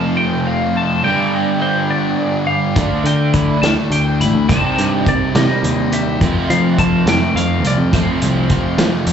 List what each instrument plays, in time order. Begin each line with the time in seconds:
Already playing: distorted electric guitar F2 F4, overdriven electric guitar F2 C3 F3 A3 C4 F4, clean electric guitar A5
0.17 distorted electric guitar A3, clean electric guitar G5
0.45 distorted electric guitar C4, clean electric guitar F5
0.74 distorted electric guitar F4, clean electric guitar A5
1.03 distorted electric guitar G2, overdriven electric guitar G2 D3 G3 B3 D4, clean electric guitar G5
1.07 overdriven electric guitar G4
1.60 distorted electric guitar G4, clean electric guitar C5
1.89 distorted electric guitar B3, clean electric guitar D5
2.18 distorted electric guitar D4
2.47 distorted electric guitar G4, clean electric guitar F5
2.75 picked electric bass D2, overdriven electric guitar D3 A3 D4, distorted electric guitar D3, kick, closed hi-hat
3.04 picked electric bass D3, clean electric guitar G5, closed hi-hat
3.34 distorted electric guitar E4, clean electric guitar B5, kick, closed hi-hat
3.62 picked electric bass D2, distorted electric guitar A3, clean electric guitar A5, snare, closed hi-hat
3.90 picked electric bass D2, distorted electric guitar D4, clean electric guitar G5, closed hi-hat
4.20 picked electric bass A1, distorted electric guitar E4, clean electric guitar B5, closed hi-hat
4.34 picked electric bass D2
4.49 picked electric bass C2, distorted electric guitar C3, overdriven electric guitar C3 D#3 G3 C4 G4, clean electric guitar A5, kick, closed hi-hat
4.78 picked electric bass G2, closed hi-hat
4.91 clean electric guitar G5
5.06 distorted electric guitar G4, clean electric guitar D5, kick, closed hi-hat
5.34 picked electric bass C3, distorted electric guitar G3, clean electric guitar D#5, snare, closed hi-hat
5.63 picked electric bass D#2, distorted electric guitar C4, closed hi-hat
5.92 distorted electric guitar G4, clean electric guitar E5, closed hi-hat
6.20 distorted electric guitar F2, overdriven electric guitar F2 C3 F3 A3, picked electric bass F2, kick, closed hi-hat
6.24 overdriven electric guitar C4 F4
6.50 picked electric bass F3, clean electric guitar F5, closed hi-hat
6.78 distorted electric guitar F4, clean electric guitar A5, kick, closed hi-hat
7.06 picked electric bass F2, distorted electric guitar A3, clean electric guitar G5, snare, closed hi-hat
7.35 picked electric bass F2, distorted electric guitar C4, clean electric guitar F5, closed hi-hat
7.64 picked electric bass C2, distorted electric guitar F4, clean electric guitar D5, closed hi-hat
7.78 picked electric bass F2
7.92 overdriven electric guitar F2 C3 F3 A3 C4 F4, picked electric bass F2, distorted electric guitar F2, clean electric guitar C5, kick, closed hi-hat
8.22 picked electric bass C2, closed hi-hat
8.50 distorted electric guitar F4, kick, closed hi-hat
8.78 picked electric bass F3, distorted electric guitar A3, snare, closed hi-hat
9.07 picked electric bass F2, distorted electric guitar C4, closed hi-hat